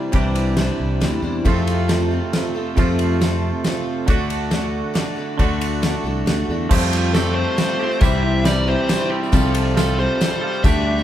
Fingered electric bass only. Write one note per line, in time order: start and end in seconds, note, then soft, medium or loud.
0.14 0.69 C2 medium
0.80 0.99 C2 medium
1.02 1.21 D2 medium
1.22 1.42 E2 medium
1.45 2.18 F2 medium
2.78 3.50 F2 medium
4.08 4.81 D2 medium
5.39 5.94 D2 loud
6.04 6.24 C2 medium
6.26 6.46 D2 medium
6.49 6.68 E2 medium
6.71 7.44 F2 medium
8.02 8.75 C2 medium
9.33 10.06 C2 medium
10.64 11.03 D2 loud